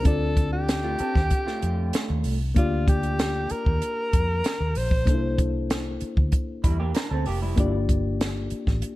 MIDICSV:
0, 0, Header, 1, 7, 480
1, 0, Start_track
1, 0, Key_signature, -2, "minor"
1, 0, Tempo, 626305
1, 41, Time_signature, 4, 2, 24, 8
1, 6865, End_track
2, 0, Start_track
2, 0, Title_t, "Alto saxophone"
2, 0, Program_c, 0, 65
2, 43, Note_on_c, 0, 69, 90
2, 398, Note_off_c, 0, 69, 0
2, 402, Note_on_c, 0, 67, 95
2, 1692, Note_off_c, 0, 67, 0
2, 1970, Note_on_c, 0, 65, 82
2, 2190, Note_off_c, 0, 65, 0
2, 2215, Note_on_c, 0, 67, 81
2, 2694, Note_on_c, 0, 70, 95
2, 2706, Note_off_c, 0, 67, 0
2, 3658, Note_on_c, 0, 72, 92
2, 3669, Note_off_c, 0, 70, 0
2, 4131, Note_off_c, 0, 72, 0
2, 6865, End_track
3, 0, Start_track
3, 0, Title_t, "Reed electric piano"
3, 0, Program_c, 1, 4
3, 0, Control_c, 1, 64, 127
3, 26, Note_on_c, 1, 60, 66
3, 33, Note_on_c, 1, 62, 54
3, 43, Note_on_c, 1, 65, 55
3, 51, Control_c, 1, 64, 0
3, 52, Note_on_c, 1, 69, 55
3, 59, Note_on_c, 1, 74, 70
3, 169, Control_c, 1, 64, 127
3, 1924, Note_off_c, 1, 60, 0
3, 1928, Note_off_c, 1, 62, 0
3, 1933, Note_off_c, 1, 65, 0
3, 1937, Note_off_c, 1, 69, 0
3, 1941, Note_off_c, 1, 74, 0
3, 1951, Note_on_c, 1, 58, 66
3, 1958, Note_on_c, 1, 62, 60
3, 1968, Note_on_c, 1, 65, 57
3, 1971, Control_c, 1, 64, 0
3, 1974, Note_on_c, 1, 67, 59
3, 1984, Note_on_c, 1, 74, 73
3, 2126, Control_c, 1, 64, 127
3, 3847, Note_off_c, 1, 58, 0
3, 3851, Note_off_c, 1, 62, 0
3, 3855, Note_off_c, 1, 65, 0
3, 3858, Note_off_c, 1, 67, 0
3, 3863, Note_off_c, 1, 74, 0
3, 3874, Note_on_c, 1, 58, 63
3, 3880, Note_on_c, 1, 62, 57
3, 3890, Note_on_c, 1, 63, 48
3, 3893, Control_c, 1, 64, 0
3, 3898, Note_on_c, 1, 69, 55
3, 3907, Note_on_c, 1, 72, 65
3, 3937, Note_off_c, 1, 63, 0
3, 3938, Note_on_c, 1, 64, 54
3, 4044, Control_c, 1, 64, 127
3, 5768, Note_off_c, 1, 58, 0
3, 5771, Note_off_c, 1, 62, 0
3, 5780, Note_off_c, 1, 69, 0
3, 5784, Note_off_c, 1, 72, 0
3, 5794, Note_on_c, 1, 58, 73
3, 5800, Note_off_c, 1, 64, 0
3, 5800, Note_on_c, 1, 62, 69
3, 5810, Note_on_c, 1, 65, 70
3, 5813, Control_c, 1, 64, 0
3, 5818, Note_on_c, 1, 67, 66
3, 5824, Note_on_c, 1, 74, 78
3, 5939, Control_c, 1, 64, 127
3, 6865, Note_off_c, 1, 58, 0
3, 6865, Note_off_c, 1, 62, 0
3, 6865, Note_off_c, 1, 65, 0
3, 6865, Note_off_c, 1, 67, 0
3, 6865, Note_off_c, 1, 74, 0
3, 6865, End_track
4, 0, Start_track
4, 0, Title_t, "Clean electric guitar"
4, 0, Program_c, 2, 27
4, 643, Note_on_c, 2, 65, 62
4, 649, Note_on_c, 2, 57, 50
4, 757, Note_off_c, 2, 65, 0
4, 760, Note_off_c, 2, 57, 0
4, 767, Note_on_c, 2, 69, 65
4, 770, Note_on_c, 2, 60, 57
4, 878, Note_off_c, 2, 69, 0
4, 881, Note_off_c, 2, 60, 0
4, 881, Note_on_c, 2, 67, 67
4, 1110, Note_off_c, 2, 67, 0
4, 1123, Note_on_c, 2, 65, 67
4, 1129, Note_on_c, 2, 57, 53
4, 1812, Note_off_c, 2, 65, 0
4, 1816, Note_off_c, 2, 57, 0
4, 5087, Note_on_c, 2, 64, 58
4, 5093, Note_on_c, 2, 55, 50
4, 5199, Note_off_c, 2, 64, 0
4, 5202, Note_off_c, 2, 55, 0
4, 5209, Note_on_c, 2, 67, 66
4, 5213, Note_on_c, 2, 58, 55
4, 5321, Note_off_c, 2, 67, 0
4, 5322, Note_off_c, 2, 58, 0
4, 5325, Note_on_c, 2, 70, 76
4, 5332, Note_on_c, 2, 62, 58
4, 5438, Note_off_c, 2, 70, 0
4, 5442, Note_off_c, 2, 62, 0
4, 5449, Note_on_c, 2, 69, 62
4, 5453, Note_on_c, 2, 60, 59
4, 5560, Note_off_c, 2, 69, 0
4, 5562, Note_off_c, 2, 60, 0
4, 5569, Note_on_c, 2, 67, 58
4, 5574, Note_on_c, 2, 58, 51
4, 5680, Note_off_c, 2, 67, 0
4, 5683, Note_off_c, 2, 58, 0
4, 5688, Note_on_c, 2, 64, 56
4, 5693, Note_on_c, 2, 55, 46
4, 5914, Note_off_c, 2, 64, 0
4, 5916, Note_off_c, 2, 55, 0
4, 6865, End_track
5, 0, Start_track
5, 0, Title_t, "Fingered electric bass"
5, 0, Program_c, 3, 33
5, 43, Note_on_c, 3, 38, 91
5, 732, Note_off_c, 3, 38, 0
5, 888, Note_on_c, 3, 39, 72
5, 992, Note_off_c, 3, 39, 0
5, 1248, Note_on_c, 3, 41, 77
5, 1458, Note_off_c, 3, 41, 0
5, 1609, Note_on_c, 3, 39, 80
5, 1712, Note_off_c, 3, 39, 0
5, 1729, Note_on_c, 3, 36, 78
5, 1939, Note_off_c, 3, 36, 0
5, 1967, Note_on_c, 3, 38, 94
5, 2655, Note_off_c, 3, 38, 0
5, 2809, Note_on_c, 3, 39, 82
5, 2913, Note_off_c, 3, 39, 0
5, 3171, Note_on_c, 3, 41, 71
5, 3380, Note_off_c, 3, 41, 0
5, 3529, Note_on_c, 3, 39, 84
5, 3633, Note_off_c, 3, 39, 0
5, 3651, Note_on_c, 3, 34, 87
5, 3888, Note_off_c, 3, 34, 0
5, 3888, Note_on_c, 3, 36, 94
5, 4575, Note_off_c, 3, 36, 0
5, 4733, Note_on_c, 3, 38, 76
5, 4835, Note_off_c, 3, 38, 0
5, 5091, Note_on_c, 3, 40, 75
5, 5300, Note_off_c, 3, 40, 0
5, 5451, Note_on_c, 3, 38, 79
5, 5553, Note_off_c, 3, 38, 0
5, 5572, Note_on_c, 3, 29, 78
5, 5780, Note_off_c, 3, 29, 0
5, 5809, Note_on_c, 3, 31, 93
5, 6495, Note_off_c, 3, 31, 0
5, 6649, Note_on_c, 3, 33, 70
5, 6752, Note_off_c, 3, 33, 0
5, 6865, End_track
6, 0, Start_track
6, 0, Title_t, "Muted fingered electric bass strokes"
6, 768, Note_on_c, 9, 29, 44
6, 845, Note_off_c, 9, 29, 0
6, 2690, Note_on_c, 9, 29, 43
6, 2767, Note_off_c, 9, 29, 0
6, 4613, Note_on_c, 9, 29, 46
6, 4689, Note_off_c, 9, 29, 0
6, 6528, Note_on_c, 9, 29, 44
6, 6604, Note_off_c, 9, 29, 0
6, 6865, End_track
7, 0, Start_track
7, 0, Title_t, "Drums"
7, 37, Note_on_c, 9, 42, 73
7, 40, Note_on_c, 9, 36, 102
7, 114, Note_off_c, 9, 42, 0
7, 117, Note_off_c, 9, 36, 0
7, 282, Note_on_c, 9, 36, 92
7, 283, Note_on_c, 9, 42, 59
7, 358, Note_off_c, 9, 36, 0
7, 359, Note_off_c, 9, 42, 0
7, 526, Note_on_c, 9, 42, 86
7, 529, Note_on_c, 9, 38, 115
7, 602, Note_off_c, 9, 42, 0
7, 606, Note_off_c, 9, 38, 0
7, 756, Note_on_c, 9, 42, 53
7, 832, Note_off_c, 9, 42, 0
7, 885, Note_on_c, 9, 36, 75
7, 890, Note_on_c, 9, 38, 29
7, 962, Note_off_c, 9, 36, 0
7, 967, Note_off_c, 9, 38, 0
7, 1000, Note_on_c, 9, 42, 73
7, 1004, Note_on_c, 9, 36, 80
7, 1076, Note_off_c, 9, 42, 0
7, 1080, Note_off_c, 9, 36, 0
7, 1129, Note_on_c, 9, 38, 34
7, 1205, Note_off_c, 9, 38, 0
7, 1245, Note_on_c, 9, 42, 70
7, 1321, Note_off_c, 9, 42, 0
7, 1481, Note_on_c, 9, 42, 88
7, 1495, Note_on_c, 9, 38, 95
7, 1557, Note_off_c, 9, 42, 0
7, 1572, Note_off_c, 9, 38, 0
7, 1716, Note_on_c, 9, 46, 60
7, 1793, Note_off_c, 9, 46, 0
7, 1964, Note_on_c, 9, 36, 97
7, 1964, Note_on_c, 9, 42, 75
7, 2040, Note_off_c, 9, 36, 0
7, 2040, Note_off_c, 9, 42, 0
7, 2204, Note_on_c, 9, 36, 90
7, 2207, Note_on_c, 9, 42, 61
7, 2281, Note_off_c, 9, 36, 0
7, 2284, Note_off_c, 9, 42, 0
7, 2324, Note_on_c, 9, 42, 49
7, 2401, Note_off_c, 9, 42, 0
7, 2447, Note_on_c, 9, 42, 89
7, 2450, Note_on_c, 9, 38, 121
7, 2523, Note_off_c, 9, 42, 0
7, 2527, Note_off_c, 9, 38, 0
7, 2679, Note_on_c, 9, 42, 58
7, 2756, Note_off_c, 9, 42, 0
7, 2808, Note_on_c, 9, 36, 74
7, 2884, Note_off_c, 9, 36, 0
7, 2926, Note_on_c, 9, 42, 75
7, 3003, Note_off_c, 9, 42, 0
7, 3167, Note_on_c, 9, 42, 69
7, 3168, Note_on_c, 9, 36, 84
7, 3244, Note_off_c, 9, 42, 0
7, 3245, Note_off_c, 9, 36, 0
7, 3404, Note_on_c, 9, 42, 90
7, 3418, Note_on_c, 9, 38, 96
7, 3481, Note_off_c, 9, 42, 0
7, 3495, Note_off_c, 9, 38, 0
7, 3642, Note_on_c, 9, 46, 65
7, 3719, Note_off_c, 9, 46, 0
7, 3764, Note_on_c, 9, 36, 81
7, 3841, Note_off_c, 9, 36, 0
7, 3886, Note_on_c, 9, 36, 106
7, 3886, Note_on_c, 9, 42, 77
7, 3963, Note_off_c, 9, 36, 0
7, 3963, Note_off_c, 9, 42, 0
7, 4127, Note_on_c, 9, 36, 85
7, 4127, Note_on_c, 9, 42, 61
7, 4203, Note_off_c, 9, 36, 0
7, 4204, Note_off_c, 9, 42, 0
7, 4371, Note_on_c, 9, 42, 87
7, 4375, Note_on_c, 9, 38, 110
7, 4448, Note_off_c, 9, 42, 0
7, 4451, Note_off_c, 9, 38, 0
7, 4603, Note_on_c, 9, 42, 57
7, 4679, Note_off_c, 9, 42, 0
7, 4729, Note_on_c, 9, 36, 77
7, 4806, Note_off_c, 9, 36, 0
7, 4843, Note_on_c, 9, 42, 72
7, 4848, Note_on_c, 9, 36, 84
7, 4920, Note_off_c, 9, 42, 0
7, 4925, Note_off_c, 9, 36, 0
7, 5088, Note_on_c, 9, 42, 65
7, 5089, Note_on_c, 9, 36, 83
7, 5165, Note_off_c, 9, 42, 0
7, 5166, Note_off_c, 9, 36, 0
7, 5324, Note_on_c, 9, 42, 86
7, 5338, Note_on_c, 9, 38, 94
7, 5400, Note_off_c, 9, 42, 0
7, 5414, Note_off_c, 9, 38, 0
7, 5562, Note_on_c, 9, 46, 70
7, 5638, Note_off_c, 9, 46, 0
7, 5805, Note_on_c, 9, 42, 77
7, 5807, Note_on_c, 9, 36, 91
7, 5882, Note_off_c, 9, 42, 0
7, 5883, Note_off_c, 9, 36, 0
7, 6047, Note_on_c, 9, 36, 83
7, 6049, Note_on_c, 9, 42, 61
7, 6123, Note_off_c, 9, 36, 0
7, 6125, Note_off_c, 9, 42, 0
7, 6290, Note_on_c, 9, 42, 90
7, 6294, Note_on_c, 9, 38, 123
7, 6367, Note_off_c, 9, 42, 0
7, 6371, Note_off_c, 9, 38, 0
7, 6517, Note_on_c, 9, 42, 56
7, 6594, Note_off_c, 9, 42, 0
7, 6646, Note_on_c, 9, 36, 71
7, 6647, Note_on_c, 9, 38, 32
7, 6722, Note_off_c, 9, 36, 0
7, 6724, Note_off_c, 9, 38, 0
7, 6760, Note_on_c, 9, 42, 76
7, 6836, Note_off_c, 9, 42, 0
7, 6865, End_track
0, 0, End_of_file